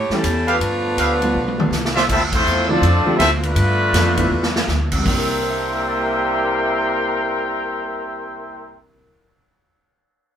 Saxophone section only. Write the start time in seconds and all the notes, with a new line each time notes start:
Already playing: A3 E4 G4 C#5
0.14 G3 C#4 E4 A4
0.52 A3 D4 F4 B4